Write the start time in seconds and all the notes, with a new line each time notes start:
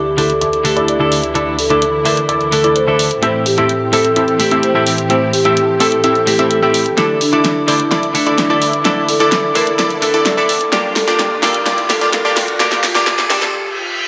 Already playing: D2 D3 E3 E4 G4 A4 D5 D6
0.17 D3 A3 D4 E4 A4 C5 D5 D6, open hi-hat
0.30 closed hi-hat
0.41 E4 A4 D5 D6, closed hi-hat
0.53 closed hi-hat
0.64 D3 A3 D4 E4 G4 A4, open hi-hat
0.76 E4 A4 D5 D6, closed hi-hat
0.88 D5, closed hi-hat
0.99 D3 A3 D4 E4 A4 D5 D6
1.12 open hi-hat
1.24 closed hi-hat
1.34 D3 A3 D4 E4 A4 D5 D6, closed hi-hat
1.59 A4, open hi-hat
1.70 D3 A3 D4 E4 A4 D5 D6, closed hi-hat
1.82 closed hi-hat
2.05 D3 A3 D4 E4 A4 A#4 C5 D5 D6, open hi-hat
2.17 closed hi-hat
2.29 E4 A4 D5 D6, closed hi-hat
2.41 closed hi-hat
2.52 D3 A3 D4 E4 A4, open hi-hat
2.64 E4 A4 D5 D6, closed hi-hat
2.76 C5, closed hi-hat
2.87 D3 A3 D4 E4 A4 D5 D6
2.99 open hi-hat
3.11 closed hi-hat
3.22 A2 E3 A3 C4 E4 G4 A4 C5 E5 E6, closed hi-hat
3.46 G4, open hi-hat
3.57 A2 A3 C4 E4 G4 A4 E5 E6, closed hi-hat
3.69 closed hi-hat
3.92 A2 A3 C4 E4 G4 A4 E5 E6, open hi-hat
4.05 closed hi-hat
4.16 C4 E4 G4 A4 E5 E6, closed hi-hat
4.28 closed hi-hat
4.39 A2 A3 C4 E4 G4, open hi-hat
4.51 C4 E4 G4 A4 E5 E6, closed hi-hat
4.63 C5, closed hi-hat
4.74 A2 A3 C4 E4 G4 A4 E5 E6
4.86 open hi-hat
4.98 closed hi-hat
5.09 A2 A3 C4 E4 G4 A4 C5 E5 E6, closed hi-hat
5.33 G4, open hi-hat
5.45 A2 A3 C4 E4 G4 A4 E5 E6, closed hi-hat
5.57 closed hi-hat
5.80 A2 A3 C4 E4 G4 A4 E5 E6, open hi-hat
5.92 closed hi-hat
6.04 C4 E4 G4 A4 E5 E6, closed hi-hat
6.15 closed hi-hat
6.26 A2 A3 C4 E4 G4, open hi-hat
6.39 C4 E4 G4 A4 E5 E6, closed hi-hat
6.51 A4, closed hi-hat
6.62 A2 A3 C4 E4 G4 A4 E5 E6
6.74 open hi-hat
6.86 closed hi-hat
6.97 D2 D3 E3 A3 D4 E4 A4 D5 D6, snare, closed hi-hat, riser
7.21 D4, open hi-hat
7.32 D3 A3 D4 E4 A4 D5 D6, closed hi-hat
7.45 snare, closed hi-hat
7.67 D3 A3 D4 E4 A4 C5 D5 D6, open hi-hat
7.80 closed hi-hat
7.91 E4 A4 D5 D6, snare, closed hi-hat
8.03 closed hi-hat
8.14 D3 A3 D4 E4 A4, open hi-hat
8.27 E4 A4 D5 D6, closed hi-hat
8.38 D5, snare, closed hi-hat
8.49 D3 A3 D4 E4 A4 D5 D6
8.62 open hi-hat
8.73 closed hi-hat
8.84 D3 A3 D4 E4 A4 D5 D6, snare, closed hi-hat
9.09 A4, open hi-hat
9.20 D3 A3 D4 E4 A4 D5 D6, closed hi-hat
9.32 snare, closed hi-hat
9.55 D3 A3 D4 E4 A4 A#4 C5 D5 D6, open hi-hat
9.67 closed hi-hat
9.79 E4 A4 D5 D6, snare, closed hi-hat
9.90 closed hi-hat
10.02 D3 A3 D4 E4 A4, open hi-hat
10.14 E4 A4 D5 D6, closed hi-hat
10.26 D5, snare, closed hi-hat
10.36 D3 A3 D4 E4 A4 D5 D6
10.49 open hi-hat
10.61 closed hi-hat
10.72 G2 D3 A#3 D4 F4 G4 D5 D6, snare, closed hi-hat
10.96 A4, snare, open hi-hat
11.07 G2 A#3 D4 F4 G4 D5 D6, closed hi-hat
11.19 snare, closed hi-hat
11.42 G2 A#3 D4 F4 G4 A4 A#4 D5 D6, snare, open hi-hat
11.54 closed hi-hat
11.66 A#3 D4 F4 G4 D5 D6, snare, closed hi-hat
11.78 closed hi-hat
11.89 G2 A#3 D4 F4 G4 A4, snare, open hi-hat
12.01 A#3 D4 F4 G4 D5 D6, closed hi-hat
12.13 A#4, snare, closed hi-hat
12.24 G2 A#3 D4 F4 G4 D5 D6
12.37 snare, open hi-hat
12.48 closed hi-hat
12.59 G2 A#3 D4 F4 G4 A#4 D5 D6, snare, closed hi-hat
12.72 snare, closed hi-hat
12.83 F4, snare, open hi-hat
12.95 G2 A#3 D4 F4 G4 D5 D6, snare, closed hi-hat
13.07 snare, closed hi-hat
13.19 snare, closed hi-hat
13.30 G2 A#3 D4 F4 G4 A4 D5 D6, snare, open hi-hat
13.42 snare, closed hi-hat
13.54 reverse cymbal
13.77 F4